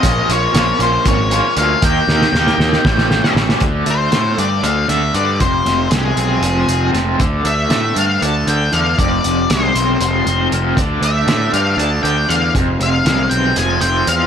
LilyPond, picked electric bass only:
\new Staff \with { instrumentName = "Picked electric bass" } { \clef bass \time 7/8 \key bes \major \tempo 4 = 118 bes,,8 bes,,8 bes,,8 bes,,8 aes,,4 d,8 | ees,8 ees,8 ees,8 ees,8 a,,4 a,,8 | \key f \lydian d,8 d,8 a,8 g,8 d,8 d,8 g,8 | f,,8 f,,8 c,8 b,,8 f,,8 f,,8 f,,8 |
d,8 d,8 a,8 g,8 d,8 d,8 e,8 | f,,8 f,,8 c,8 b,,8 f,,8 f,,8 f,,8 | d,8 d,8 a,8 g,8 d,8 d,8 e,8 | f,,8 f,,8 c,8 b,,8 f,,8 f,,8 e,8 | }